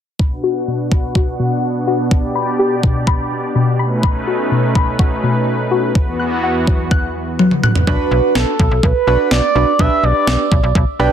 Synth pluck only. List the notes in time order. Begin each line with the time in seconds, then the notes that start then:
0.19 B5
0.43 F#4
0.67 B2
0.91 B5
1.15 F#4
1.39 B2
1.87 F#4
2.35 B5
2.59 G4
2.83 B2
3.07 B5
3.55 B2
3.79 B5
4.03 B5
4.27 F#4
4.51 B2
4.75 B5
4.99 F#4
5.23 B2
5.71 F#4
6.19 F#6
6.43 F#5
6.67 F#3
6.91 F#6
7.39 F#3
7.63 F#6